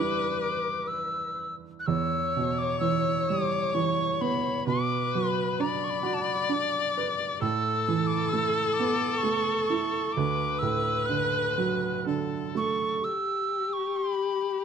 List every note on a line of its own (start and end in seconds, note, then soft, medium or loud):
0.00 1.84 E2 medium
0.00 1.84 G3 soft
0.00 1.84 D4 soft
0.00 1.84 E4 soft
0.00 1.38 B4 loud
0.00 0.39 D6 medium
0.41 0.89 D6 medium
0.87 1.55 E6 medium
1.80 1.88 F#6 medium
1.86 4.64 E2 medium
1.86 4.64 C#5 loud
1.86 2.60 E6 medium
2.36 4.18 B2 soft
2.58 2.79 D6 medium
2.80 3.73 E3 soft
2.80 3.30 E6 medium
3.28 4.64 G3 medium
3.28 3.76 D6 medium
3.74 4.65 E3 soft
3.74 4.23 C#6 medium
4.21 4.66 B3 medium
4.21 4.67 B5 medium
4.67 7.38 B2 medium
4.67 5.62 B4 loud
4.67 5.16 D6 medium
5.15 6.93 F#3 medium
5.15 5.60 B5 medium
5.60 6.48 D4 medium
5.60 7.42 D5 loud
5.60 5.85 B5 medium
5.84 5.91 C#6 soft
5.90 6.15 B5 medium
6.03 7.37 F#4 medium
6.14 6.23 A5 soft
6.22 6.52 B5 medium
6.49 7.39 D4 soft
6.98 7.41 B4 medium
7.41 10.11 A2 medium
7.41 10.18 A4 loud
7.41 8.08 E6 medium
7.88 9.66 E3 medium
8.07 8.30 D6 medium
8.29 9.22 A3 medium
8.29 8.70 E6 medium
8.70 9.19 D6 medium
8.70 8.73 E6 medium
8.80 10.13 B3 medium
9.17 9.65 C#6 medium
9.23 10.13 A3 medium
9.66 10.14 C#6 medium
9.70 10.14 E4 medium
10.12 10.60 D6 medium
10.17 13.00 D2 medium
10.17 12.07 B4 loud
10.59 12.51 A2 soft
10.59 11.07 E6 medium
11.06 12.05 D3 soft
11.06 12.04 F#6 medium
11.58 12.99 F#3 medium
12.06 13.00 D3 soft
12.06 13.00 A4 medium
12.55 13.01 A3 medium
12.55 13.06 C#6 medium
13.04 14.64 G4 medium
13.04 13.74 E6 medium
13.73 13.98 C#6 medium
13.97 14.64 B5 medium